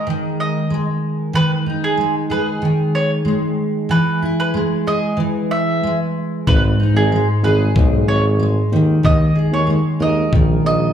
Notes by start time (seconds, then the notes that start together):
Already playing: G#3 G#4 A#4
0.07 D#3
0.40 D#5
0.70 G#3
1.33 D#3 B4
1.66 D#4
1.84 G#4
1.97 G#3
2.30 G#4 B4
2.62 D#3
2.95 C#5
3.25 G#3
3.89 E3 B4
4.22 E4
4.40 B4
4.54 G#3
4.87 G#4 D#5
5.17 E3
5.51 E5
5.83 G#3
6.47 G#1 G#2 B4, kick
6.80 D#4
6.95 G#1 G#4
7.12 G#3
7.43 G#1 G#4 B4
7.75 B1 G#2, kick
8.06 G#1 C#5
8.39 G#3
8.72 D#2 D#3
9.03 D#2 D#3 D#5, kick
9.36 G#4
9.52 D#2 C#5
9.67 G#3
10.00 D#2 A#4 D#5
10.32 A#1 D#3, kick
10.64 A#1 D#5